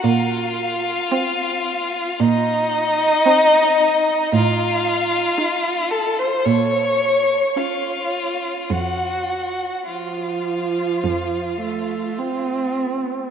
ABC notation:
X:1
M:4/4
L:1/16
Q:1/4=55
K:Bbm
V:1 name="Violin"
f8 e8 | f6 =a c' d'4 f4 | g4 f8- f2 z2 |]
V:2 name="Violin"
F8 E8 | F6 =A c d4 F4 | G4 F8- F2 z2 |]
V:3 name="Viola"
z4 C4 z4 C4 | z4 E4 z4 D4 | z4 F,6 =A,2 C4 |]
V:4 name="Cello" clef=bass
B,,4 z4 B,,4 z4 | =A,,4 z4 B,,4 z4 | F,,4 z4 F,,4 z4 |]